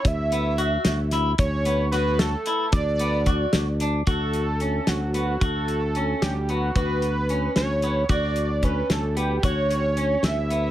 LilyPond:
<<
  \new Staff \with { instrumentName = "Analog synth lead" } { \time 5/8 \key fis \phrygian \tempo 4 = 112 e''2 r8 | cis''4 b'8 a'4 | d''2 r8 | a'4. fis'4 |
a'4. g'8 fis'8 | b'4. cis''4 | d''4 b'8 a'8 g'8 | cis''4. e''4 | }
  \new Staff \with { instrumentName = "Clean electric guitar" } { \time 5/8 \key fis \phrygian r8 b8 fis'4 e'8 | r8 b8 fis'4 e'8 | r8 b8 fis'4 d'8 | fis'4 cis'4 b8 |
fis'4 cis'4 b8 | fis'4 cis'4 b8 | fis'4 cis'4 b8 | fis'4 cis'4 b8 | }
  \new Staff \with { instrumentName = "Fingered electric bass" } { \clef bass \time 5/8 \key fis \phrygian d,4. d,4 | d,2 r8 | d,4. d,4 | d,4. d,4 |
d,4. d,4 | d,4. d,4 | d,4. d,4 | d,4. d,4 | }
  \new DrumStaff \with { instrumentName = "Drums" } \drummode { \time 5/8 <hh bd>8 hh8 hh8 <hh sn>8 <hh sn>8 | <hh bd>8 hh8 <hh sn>8 <hh sn>8 hh8 | <hh bd>8 hh8 <hh bd>8 <hh sn>8 hh8 | <hh bd>8 hh8 hh8 <hh sn>8 hh8 |
<hh bd>8 hh8 hh8 <hh sn>8 hh8 | <hh bd>8 hh8 hh8 <hh sn>8 hh8 | <hh bd>8 hh8 <hh bd>8 <hh sn>8 hh8 | <hh bd>8 hh8 hh8 <hh sn>8 hh8 | }
>>